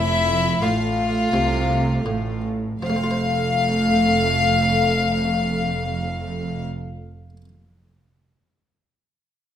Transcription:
Already playing: F1 F2 A3 E4 E5
0.62 A1 A2 A3 F4 F5
1.33 C2 C3 A3 C4 F4
2.06 A1 A2
2.82 F1 F2 F3 A3 F5
2.90 A3
2.96 C4
3.04 F4
3.11 C5

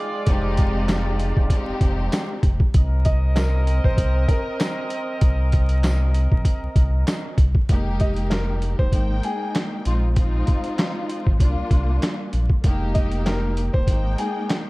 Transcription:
Already playing: G#3 F4 D5
0.26 F1 G#3 C4 D#4 G4, kick, closed hi-hat
0.57 kick, closed hi-hat
0.89 snare, clap, closed hi-hat, tambourine
1.20 closed hi-hat
1.37 D#1, kick
1.50 G#3 C4 D#4 G4, kick, closed hi-hat
1.68 F1
1.81 F1, kick, closed hi-hat
2.12 snare, clap, closed hi-hat, tambourine
2.43 F1, kick, closed hi-hat
2.60 kick
2.74 C2 C4 A#4 D#5, kick, closed hi-hat
3.05 D#5, kick, closed hi-hat
3.36 A#4, snare, clap, closed hi-hat, tambourine
3.67 closed hi-hat
3.84 A#1 C5, kick
3.98 C2, kick, closed hi-hat
4.28 A#4, kick, closed hi-hat
4.60 snare, clap, closed hi-hat, tambourine
4.90 closed hi-hat
5.21 C2, kick, closed hi-hat
5.52 kick, closed hi-hat
5.69 closed hi-hat
5.83 snare, clap, closed hi-hat, tambourine
6.14 closed hi-hat
6.32 A#1, kick
6.45 kick, closed hi-hat
6.63 C2
6.76 C2, kick, closed hi-hat
7.07 snare, clap, closed hi-hat, tambourine
7.38 C2, kick, closed hi-hat
7.55 kick
7.69 F1 G#3 A#3 D#4 G4, kick, closed hi-hat
8.00 D#5, kick, closed hi-hat
8.16 closed hi-hat
8.30 A#4, snare, clap, closed hi-hat
8.62 closed hi-hat
8.79 D#1 C5, kick
8.92 G#1 G#3 A#3 D#4 G5, kick, closed hi-hat
9.23 G#4, closed hi-hat
9.55 snare, clap, closed hi-hat
9.85 A#1 G#3 C4 D#4 F4, closed hi-hat
10.15 G#3 C4 D#4 F4, kick, closed hi-hat
10.47 kick, closed hi-hat
10.64 closed hi-hat
10.78 snare, clap, closed hi-hat
11.09 closed hi-hat
11.27 G#1, kick
11.40 C2 G3 A#3 D4 F4, kick, closed hi-hat
11.57 C2
11.71 C2, kick, closed hi-hat
12.02 snare, clap, closed hi-hat
12.33 A#1, closed hi-hat
12.50 kick
12.64 F1 G#3 A#3 D#4 G4, kick, closed hi-hat
12.94 D#5, kick, closed hi-hat
13.11 closed hi-hat
13.26 A#4, snare, clap, closed hi-hat
13.57 closed hi-hat
13.73 D#1 C5, kick
13.87 G#1 G#3 A#3 D#4 G5, kick, closed hi-hat
14.18 G#4, closed hi-hat
14.50 snare, clap, closed hi-hat

